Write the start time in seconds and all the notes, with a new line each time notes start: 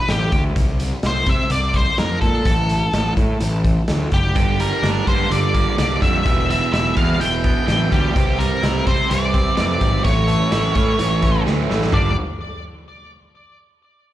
Already playing: B4
0.08 A1 G4, snare, closed hi-hat
0.32 D2, kick, closed hi-hat
0.56 C2, kick, closed hi-hat
0.80 closed hi-hat
1.03 C2 C5, snare, closed hi-hat
1.26 C3 E5, kick, closed hi-hat
1.50 C2 D5, closed hi-hat
1.74 C5, kick, closed hi-hat
1.98 F2 A#4, snare, closed hi-hat
2.21 A#2 A4, kick, closed hi-hat
2.45 A1, kick, closed hi-hat
2.69 closed hi-hat
2.93 A1, snare, closed hi-hat
3.17 A2, kick, closed hi-hat
3.40 A1, closed hi-hat
3.65 kick, closed hi-hat
3.88 D2, snare, closed hi-hat
4.12 F#1 G4, kick, closed hi-hat
4.36 G1 G2 D3 G3, kick, closed hi-hat
4.60 G2 D3 G3 A#4, closed hi-hat
4.83 G1 G2 D3 G3 D4, snare, closed hi-hat
5.06 G2 D3 G3 A#3 C5, kick, closed hi-hat
5.30 G1 G2 D3 G3 D5, closed hi-hat
5.54 G2 D3 G3 A#3, kick, closed hi-hat
5.77 C2 G2 D3 G3 D5, snare, closed hi-hat
6.01 F2 G2 D3 G3 E5, kick, closed hi-hat
6.25 E1 E2 B2 E3, kick, closed hi-hat
6.48 E2 B2 E3 G3 E5, closed hi-hat
6.73 E1 E2 B2 E3 E4 E5, snare, closed hi-hat
6.96 E2 B2 E3 B3 F5, kick, closed hi-hat
7.19 E1 E2 B2 E3 G5, closed hi-hat
7.43 E2 B2 E3 B3, kick, closed hi-hat
7.67 A1 E2 B2 E3 G5, snare, closed hi-hat
7.91 D2 E2 B2 E3 G3 G4, kick, closed hi-hat
8.15 C2 C3 G3 C4, kick, closed hi-hat
8.39 C3 G3 C4 A#4, closed hi-hat
8.62 C2 C3 G3 C4 E4, snare, closed hi-hat
8.87 C3 G3 C4 C5, kick, closed hi-hat
9.10 C2 C3 E3 G3 C4 D5, closed hi-hat
9.34 C3 G3 C4, kick, closed hi-hat
9.57 F2 C3 E3 G3 C4 D5, snare, closed hi-hat
9.81 G#1 C3 G3 C4, kick, closed hi-hat
10.04 A1 A2 E3 A3 C#5, kick, closed hi-hat
10.28 A2 E3 A3, closed hi-hat
10.51 A1 A2 E3 A3 E4, snare, closed hi-hat
10.75 A2 E3 A3 C#4, kick, closed hi-hat
10.99 A1 A2 E3 A3, closed hi-hat
11.22 A2 E3 A3 C#4, kick, snare, closed hi-hat
11.46 D2 A2 E3 A3, snare
11.70 A1 A2 E3 A3, snare
11.82 snare
11.92 G1 G2 D3 G3 A#3 D4 D5, kick, floor tom